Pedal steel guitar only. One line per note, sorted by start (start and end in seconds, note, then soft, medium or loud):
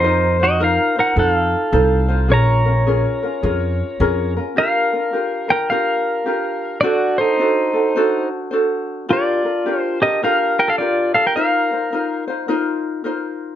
0.00 0.36 D#4 medium
0.00 0.43 C5 medium
0.43 0.61 F#4 medium
0.43 0.63 D#5 medium
0.63 0.95 A#4 medium
0.63 0.99 F5 medium
0.99 1.17 A#4 medium
0.99 1.18 F#5 medium
1.19 2.27 A4 medium
1.19 1.30 F#5 loud
1.30 2.35 F5 loud
2.32 4.33 C#5 medium
2.32 4.33 A#5 medium
4.58 5.46 A#4 medium
4.58 5.53 F5 medium
5.50 5.70 A#4 medium
5.50 5.71 G5 medium
5.70 6.80 A#4 medium
5.70 6.80 F5 loud
6.81 7.17 F#4 medium
6.81 7.19 D5 medium
7.18 8.29 D#4 medium
7.18 8.27 C5 medium
9.11 9.98 F4 medium
9.11 9.80 D5 medium
9.80 10.02 C5 medium
10.02 10.21 G4 medium
10.02 10.23 D#5 medium
10.24 10.56 A#4 medium
10.24 10.60 F5 loud
10.59 10.68 A#4 medium
10.59 10.69 G5 loud
10.68 10.78 A4 medium
10.68 10.78 F5 medium
10.78 11.12 F4 medium
10.78 11.14 D5 medium
11.14 11.24 A4 medium
11.14 11.25 F5 medium
11.26 11.34 A#4 medium
11.26 11.36 G5 medium
11.36 12.24 A#4 medium
11.36 12.24 F5 medium